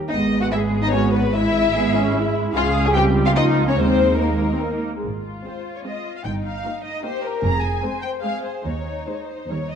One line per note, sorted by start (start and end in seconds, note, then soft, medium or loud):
0.09 2.50 G#1 medium
0.09 0.49 G#3 medium
0.09 0.49 B3 medium
0.09 0.17 D#4 medium
0.09 0.40 D#5 medium
0.41 0.45 F#4 medium
0.41 0.47 F#5 medium
0.52 0.92 G#3 medium
0.52 1.34 B3 medium
0.52 0.60 E4 medium
0.52 0.90 G#4 medium
0.52 0.60 E5 medium
0.82 0.92 D#4 medium
0.82 0.92 D#5 loud
0.91 1.34 G#3 medium
0.91 1.14 C#4 medium
0.91 1.35 F#4 medium
0.91 1.12 C#5 loud
1.13 1.22 B3 medium
1.13 1.34 B4 loud
1.34 1.73 G#3 medium
1.34 1.74 E4 medium
1.34 2.33 E4 loud
1.34 2.34 E5 loud
1.74 2.14 G#3 medium
1.74 1.95 B3 medium
1.74 2.14 G#4 medium
1.95 2.15 C#4 medium
2.14 2.54 G#3 medium
2.14 2.54 E4 loud
2.14 2.55 E4 medium
2.54 3.73 C#2 loud
2.54 2.92 G#3 medium
2.54 2.92 C#4 medium
2.54 2.64 F4 loud
2.54 2.94 G#4 loud
2.54 2.82 F5 loud
2.85 2.89 G#4 loud
2.85 2.95 G#5 medium
2.94 3.35 G3 medium
2.94 3.36 C4 medium
2.94 3.36 G4 loud
2.94 3.04 G4 loud
2.94 3.02 G5 loud
3.26 3.31 F4 medium
3.26 3.30 F5 loud
3.36 3.78 F3 medium
3.36 3.76 A#3 medium
3.36 3.67 D#4 loud
3.36 3.78 F4 medium
3.36 3.44 D#5 loud
3.68 3.72 C#4 medium
3.68 3.78 C#5 loud
3.77 4.84 D#2 medium
3.77 4.19 G#3 medium
3.77 4.19 A#3 medium
3.77 4.20 C4 loud
3.77 4.82 D#4 medium
3.77 4.20 C5 loud
4.19 4.50 G#3 medium
4.19 4.83 A#3 medium
4.19 4.83 A#4 medium
4.53 4.63 C4 medium
4.63 4.95 A#3 medium
4.96 5.05 G#3 medium
5.04 5.37 G#1 medium
5.04 5.37 G#2 medium
5.04 6.22 F4 soft
5.45 5.75 G#3 soft
5.45 5.75 C4 soft
5.45 5.74 C5 soft
5.76 5.80 C#5 soft
5.85 6.15 G#3 soft
5.85 6.15 C4 soft
5.85 6.15 D#5 medium
6.17 6.21 F5 medium
6.25 6.57 G1 medium
6.25 6.57 G2 medium
6.25 7.04 D#4 medium
6.25 6.33 G5 medium
6.45 6.84 F5 medium
6.65 6.94 A#3 medium
6.65 6.94 D#4 medium
6.85 7.04 D#5 medium
7.04 7.33 A#3 medium
7.04 7.33 D#4 medium
7.04 7.44 G4 medium
7.04 7.24 C5 medium
7.23 7.43 A#4 medium
7.43 7.75 F1 medium
7.43 7.75 F2 medium
7.43 7.83 G#4 medium
7.43 7.64 A#5 loud
7.62 8.03 G#5 medium
7.83 8.13 G#3 medium
7.83 8.13 C4 medium
7.83 8.24 C5 medium
8.02 8.10 G5 medium
8.22 8.55 G#3 medium
8.22 8.55 C4 medium
8.22 8.65 G#4 medium
8.22 8.44 F5 medium
8.44 8.65 C5 medium
8.65 8.99 D#2 medium
8.65 9.69 D#4 medium
8.65 9.08 C#5 medium
9.07 9.40 G#3 soft
9.07 9.40 D#4 medium
9.07 9.15 C5 medium
9.15 9.22 C#5 soft
9.22 9.50 C5 medium
9.49 9.75 D#2 medium
9.49 9.75 G3 medium
9.49 9.75 D#4 soft
9.49 9.71 C#5 medium
9.71 9.75 D#5 medium